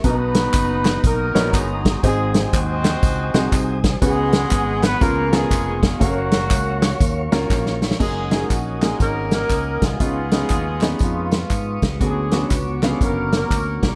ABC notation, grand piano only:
X:1
M:4/4
L:1/8
Q:"Swing" 1/4=120
K:F#
V:1 name="Grand piano"
[B,=D^DFBa]2 z3 [B,DFAc]2 z | [^B,DFG^B]2 z3 [B,DFGB]2 z | [B,CFGB]2 z2 [B,CEGB] [B,CEGA]2 z | [A,CF=A^Ae]2 z3 [A,CEFA]2 z |
[A,DFG] [A,DFG] z [A,DFG]2 z3 | [B,CDE] [B,CDG] z [B,CDG]2 z3 | [B,C=DF] [B,CDF] z [=D,B,Ce]2 z3 |]
V:2 name="Grand piano" clef=bass
B,,3 z4 z | G,,3 z4 z | C,3 z C,3 z | z8 |
z8 | C,3 z4 z | =D,3 z4 z |]